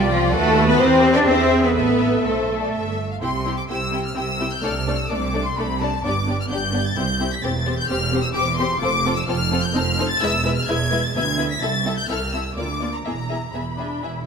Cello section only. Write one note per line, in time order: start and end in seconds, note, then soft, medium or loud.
0.00 0.10 G3 loud
0.10 0.33 F3 medium
0.33 0.68 A3 loud
0.69 0.81 B3 loud
0.80 1.16 C4 loud
1.16 1.28 D4 loud
1.27 1.64 C4 loud
1.64 1.75 B3 medium
1.76 2.24 B3 medium
2.24 2.98 A3 medium
3.22 3.64 C3 medium
3.69 4.11 C3 medium
4.16 4.58 C3 medium
4.63 5.05 C3 medium
5.10 5.52 C3 medium
5.57 5.98 C3 medium
6.03 6.44 G2 medium
6.50 6.91 G2 medium
6.97 7.37 C2 medium
7.43 7.84 E2 medium
7.90 8.30 E2 medium
8.36 8.77 E2 medium
8.82 9.23 F2 medium
9.29 9.70 F2 medium
9.75 10.16 F2 medium
10.22 10.63 E2 medium
10.69 11.10 E2 medium
11.15 11.57 D2 medium
11.62 12.03 C2 medium
12.09 12.51 C2 medium
12.57 12.99 D2 medium
13.05 13.48 E2 soft
13.54 13.97 E2 medium
14.02 14.26 E2 soft